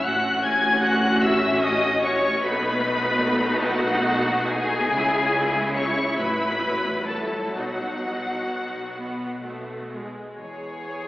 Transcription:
0.05 2.41 A1 loud
0.05 2.40 A2 loud
0.05 2.40 C#4 loud
0.05 2.40 F#4 loud
0.05 0.43 F#5 loud
0.05 0.44 F#6 loud
0.44 0.83 G#5 loud
0.44 0.84 G#6 loud
0.83 1.23 F#5 loud
0.83 1.23 F#6 loud
1.23 1.63 E5 loud
1.23 1.63 E6 loud
1.63 2.03 D#5 loud
1.63 2.04 D#6 loud
2.04 2.45 C#5 loud
2.04 2.44 C#6 loud
2.44 4.88 B1 loud
2.44 4.88 B2 loud
2.44 4.89 A3 loud
2.44 4.89 D#4 loud
2.44 3.69 B4 loud
2.44 3.69 B5 loud
3.69 4.51 F#4 loud
3.69 4.51 F#5 loud
4.50 5.75 G#4 loud
4.50 5.75 G#5 loud
4.92 6.15 C#2 loud
4.92 6.16 C#3 loud
4.92 6.15 G#3 medium
4.92 7.53 E4 loud
5.75 6.17 C#5 loud
5.75 6.17 C#6 loud
6.17 7.56 A1 medium
6.17 7.57 A2 medium
6.17 8.84 F#3 medium
6.17 7.08 B4 loud
6.17 7.09 B5 loud
7.08 7.57 A4 medium
7.08 7.55 A5 medium
7.56 10.10 B1 medium
7.56 10.10 B2 medium
7.56 8.84 D#4 medium
7.56 9.88 F#4 medium
7.56 9.91 F#5 loud
8.98 9.41 B3 medium
9.46 9.91 A3 medium
9.93 10.37 G#3 medium
10.36 11.08 E2 loud
10.36 11.08 G#4 medium
10.36 11.08 C#5 medium

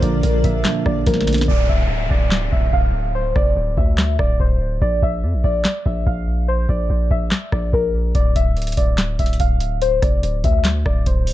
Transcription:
0.00 0.22 A#1 loud
0.00 1.50 A#2 loud
0.00 0.03 D3 medium
0.00 1.45 D3 medium
0.00 1.07 D3 medium
0.00 0.23 F3 medium
0.00 0.44 A#3 medium
0.00 1.45 A#3 medium
0.00 0.65 D4 loud
0.00 1.45 F4 medium
0.00 1.02 A#4 loud
0.00 1.45 D5 medium
0.00 0.42 D5 medium
0.00 kick loud
0.00 closed hi-hat medium
0.23 0.43 A#1 loud
0.23 1.05 F3 medium
0.23 closed hi-hat medium
0.44 0.64 A#1 loud
0.44 0.85 A#3 medium
0.44 0.83 E5 medium
0.44 kick loud
0.44 closed hi-hat medium
0.65 1.48 D4 loud
0.65 snare loud
0.65 clap medium
0.65 closed hi-hat medium
0.86 1.06 A#1 loud
0.86 1.48 A#3 medium
0.86 1.05 D5 medium
0.86 kick medium
0.86 cross-stick medium
1.06 1.47 A#1 loud
1.06 1.48 F3 medium
1.06 1.46 A#4 medium
1.06 kick loud
1.06 snare medium
1.06 closed hi-hat medium
1.14 snare medium
1.21 snare medium
1.27 1.48 D3 medium
1.27 snare medium
1.27 closed hi-hat medium
1.27 open hi-hat medium
1.33 snare loud
1.33 closed hi-hat medium
1.38 snare medium
1.38 closed hi-hat medium
1.43 closed hi-hat soft
1.48 1.68 D1 loud
1.48 1.67 D5 medium
1.48 kick loud
1.48 downlifter medium
1.69 2.09 D1 loud
1.69 2.08 E5 medium
1.69 kick medium
2.11 2.51 D1 loud
2.11 2.50 D5 medium
2.11 kick loud
2.32 snare loud
2.32 clap medium
2.52 2.72 D1 loud
2.52 2.71 E5 medium
2.52 kick medium
2.73 3.33 D1 loud
2.73 3.12 F5 medium
2.73 kick loud
3.15 3.34 C5 loud
3.36 3.56 F1 loud
3.36 3.75 D5 medium
3.36 kick loud
3.36 cross-stick medium
3.57 3.77 D1 loud
3.77 4.17 D2 loud
3.77 4.17 E5 medium
3.77 kick loud
3.98 snare loud
3.98 clap medium
4.19 4.39 D1 loud
4.19 4.38 D5 medium
4.19 kick medium
4.19 cross-stick medium
4.40 4.80 D1 loud
4.40 4.79 C5 medium
4.40 kick loud
4.82 5.02 A#1 loud
4.82 5.01 D5 medium
4.82 kick loud
5.02 5.25 A#1 loud
5.02 5.42 E5 medium
5.02 kick medium
5.23 5.35 F2 loud
5.34 5.44 A#1 medium
5.44 5.64 A#1 loud
5.44 5.83 D5 medium
5.44 kick loud
5.65 snare loud
5.65 clap medium
5.86 6.06 A#1 loud
5.86 6.05 E5 medium
5.86 kick medium
6.07 6.67 A#1 loud
6.07 6.46 F5 medium
6.07 kick loud
6.48 6.67 C5 loud
6.69 6.89 A#1 loud
6.69 7.08 D5 medium
6.69 kick loud
6.90 7.10 A#1 loud
7.11 7.31 A#1 loud
7.11 7.50 E5 medium
7.11 kick loud
7.32 snare loud
7.32 clap medium
7.52 7.72 A#1 loud
7.52 7.71 D5 medium
7.52 kick medium
7.52 cross-stick medium
7.73 8.13 A#1 loud
7.73 8.12 A#4 medium
7.73 kick medium
8.15 8.35 D1 loud
8.15 8.34 D5 medium
8.15 kick loud
8.15 closed hi-hat medium
8.36 8.76 D1 loud
8.36 8.75 E5 medium
8.36 kick medium
8.36 closed hi-hat medium
8.57 closed hi-hat soft
8.62 closed hi-hat medium
8.67 closed hi-hat medium
8.72 closed hi-hat medium
8.77 9.17 D1 loud
8.77 9.16 D5 medium
8.77 kick loud
8.77 closed hi-hat medium
8.98 snare loud
8.98 clap medium
8.98 closed hi-hat medium
9.19 9.39 D1 loud
9.19 9.38 E5 medium
9.19 kick medium
9.19 closed hi-hat medium
9.26 closed hi-hat medium
9.33 closed hi-hat medium
9.40 10.00 D1 loud
9.40 9.79 F5 medium
9.40 kick loud
9.40 closed hi-hat medium
9.60 closed hi-hat medium
9.82 10.01 C5 loud
9.82 closed hi-hat medium
10.02 10.22 F1 loud
10.02 10.42 D5 medium
10.02 kick medium
10.02 cross-stick medium
10.02 closed hi-hat medium
10.23 10.43 D1 loud
10.23 closed hi-hat medium
10.44 10.84 D2 loud
10.44 10.83 E5 medium
10.44 kick loud
10.44 closed hi-hat medium
10.64 snare loud
10.64 clap loud
10.64 closed hi-hat medium
10.86 11.06 D1 loud
10.86 11.05 D5 medium
10.86 kick medium
10.86 cross-stick medium
11.06 11.33 D1 loud
11.06 11.33 C5 medium
11.06 kick loud
11.06 closed hi-hat medium
11.27 open hi-hat medium

